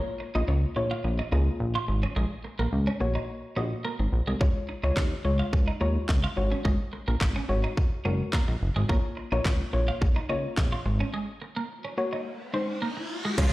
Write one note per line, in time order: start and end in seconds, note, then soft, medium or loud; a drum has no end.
0.00 0.28 A#3 medium
0.00 0.28 F4 medium
0.00 0.28 C#5 medium
0.20 muted clean electric guitar stroke soft
0.35 0.43 A#1 medium
0.35 0.70 A#3 loud
0.35 0.44 D#4 medium
0.35 0.70 F4 medium
0.35 0.70 D#5 loud
0.48 0.65 C#2 medium
0.48 0.58 C#4 medium
0.76 0.93 A#1 medium
0.76 1.24 A#3 medium
0.76 1.24 F4 medium
0.76 1.24 C#5 loud
0.76 muted clean electric guitar stroke soft
0.91 1.00 F4 medium
1.04 1.21 A#1 loud
1.04 muted clean electric guitar stroke soft
1.19 1.28 D#4 medium
1.32 1.49 C#2 medium
1.32 2.16 A#3 loud
1.32 1.42 D#4 medium
1.32 2.16 F4 medium
1.32 2.17 G#4 loud
1.60 1.77 A#1 loud
1.75 1.84 F4 medium
1.88 2.05 G#1 loud
1.88 muted clean electric guitar stroke soft
2.03 2.12 C#4 medium
2.16 2.26 A#1 loud
2.16 2.26 G#3 medium
2.44 muted clean electric guitar stroke soft
2.59 2.67 A#1 medium
2.59 2.68 A#3 medium
2.73 2.90 C#2 medium
2.87 2.96 C#4 medium
3.00 3.18 A#1 medium
3.00 3.48 A#3 loud
3.00 3.48 F#4 medium
3.00 3.48 C#5 loud
3.00 muted clean electric guitar stroke soft
3.15 3.24 D#4 medium
3.56 3.74 A#1 medium
3.56 4.28 A#3 medium
3.56 3.66 C#4 medium
3.56 4.28 F#4 medium
3.56 4.28 D#5 medium
3.85 3.94 A#3 medium
3.99 4.07 G#1 medium
3.99 muted clean electric guitar stroke soft
4.13 4.22 A#1 loud
4.27 4.35 C2 medium
4.27 4.36 G#3 medium
4.40 4.50 C#2 loud
4.40 4.76 G#3 medium
4.40 4.50 C#4 medium
4.40 4.76 F4 medium
4.40 4.77 C#5 medium
4.40 kick loud
4.69 muted clean electric guitar stroke soft
4.83 4.92 C#2 medium
4.83 5.19 G#3 loud
4.83 4.92 D#4 medium
4.83 5.19 F4 medium
4.83 5.19 C#5 loud
4.97 5.14 D#2 medium
4.97 5.06 C#4 medium
4.97 kick loud
4.97 snare medium
4.97 clap loud
5.25 5.42 C#2 medium
5.25 5.72 G#3 medium
5.25 5.73 F4 medium
5.25 5.73 C#5 loud
5.25 muted clean electric guitar stroke soft
5.39 5.48 F4 medium
5.53 5.70 C#2 medium
5.53 muted clean electric guitar stroke soft
5.53 kick loud
5.68 5.76 D#4 medium
5.81 5.98 D#2 medium
5.81 6.35 G#3 loud
5.81 5.90 D#4 medium
5.81 6.37 F4 medium
5.81 6.36 C#5 loud
6.09 6.26 C#2 loud
6.09 kick loud
6.09 snare medium
6.09 clap loud
6.24 6.32 F4 medium
6.37 6.54 G#1 loud
6.37 7.32 G#3 medium
6.37 7.32 F#4 medium
6.37 7.32 C#5 loud
6.37 muted clean electric guitar stroke soft
6.52 6.60 C#4 medium
6.65 6.74 G#1 loud
6.65 6.74 G#3 medium
6.65 kick loud
6.93 muted clean electric guitar stroke soft
7.08 7.16 A#1 medium
7.08 7.16 A#3 medium
7.21 7.38 G#1 medium
7.21 kick loud
7.21 snare medium
7.21 clap loud
7.36 7.44 C#4 medium
7.49 7.66 G#1 medium
7.49 7.97 G#3 loud
7.49 7.97 F#4 medium
7.49 7.97 C#5 loud
7.49 muted clean electric guitar stroke soft
7.64 7.72 D#4 medium
7.77 kick loud
8.05 8.22 F#1 medium
8.05 8.77 G#3 medium
8.05 8.15 C#4 medium
8.05 8.77 F#4 medium
8.05 8.77 A#4 medium
8.33 8.43 A#3 medium
8.33 kick loud
8.33 snare medium
8.33 clap loud
8.48 8.56 A#1 loud
8.48 muted clean electric guitar stroke soft
8.61 8.70 F#1 medium
8.76 8.84 G#1 loud
8.76 8.85 G#3 medium
8.89 8.98 A#1 loud
8.89 9.25 A#3 medium
8.89 8.99 A#3 medium
8.89 9.25 F4 medium
8.89 9.25 C#5 medium
8.89 kick loud
9.17 muted clean electric guitar stroke soft
9.32 9.40 A#1 medium
9.32 9.67 A#3 loud
9.32 9.41 D#4 medium
9.32 9.67 F4 medium
9.32 9.67 C#5 loud
9.45 9.62 C#2 medium
9.45 9.55 C#4 medium
9.45 kick loud
9.45 snare medium
9.45 clap loud
9.73 9.91 A#1 medium
9.73 10.21 A#3 medium
9.73 10.21 F4 medium
9.73 10.21 C#5 loud
9.73 muted clean electric guitar stroke soft
9.88 9.97 F4 medium
10.01 10.19 A#1 loud
10.01 muted clean electric guitar stroke soft
10.01 kick loud
10.16 10.25 D#4 medium
10.29 10.47 C#2 medium
10.29 11.14 A#3 loud
10.29 10.39 D#4 medium
10.29 11.14 F4 medium
10.29 11.14 C#5 loud
10.57 10.74 A#1 loud
10.57 kick loud
10.57 snare medium
10.57 clap loud
10.72 10.81 F4 medium
10.86 11.03 G#1 loud
10.86 muted clean electric guitar stroke soft
11.00 11.09 C#4 medium
11.14 11.23 G#3 medium
11.14 riser medium
11.42 muted clean electric guitar stroke soft
11.56 11.65 A#3 medium
11.85 11.93 C#4 medium
11.97 12.26 A#3 medium
11.97 12.26 F#4 medium
11.97 12.26 C#5 loud
11.97 muted clean electric guitar stroke soft
12.13 12.21 D#4 medium
12.53 13.25 G#3 medium
12.53 12.63 C4 medium
12.53 13.25 D#4 medium
12.53 13.25 C5 loud
12.82 12.92 A#3 medium
12.97 muted clean electric guitar stroke soft
13.25 13.33 G#3 medium
13.38 13.53 C#2 loud
13.38 13.53 C#3 medium
13.38 13.53 F3 medium
13.38 13.53 G#3 loud
13.38 13.53 G#3 medium
13.38 13.48 C#4 medium
13.38 13.53 F4 medium
13.38 13.53 F4 loud
13.38 13.53 C#5 loud
13.38 kick loud
13.38 closed hi-hat medium
13.38 crash medium
13.38 shaker medium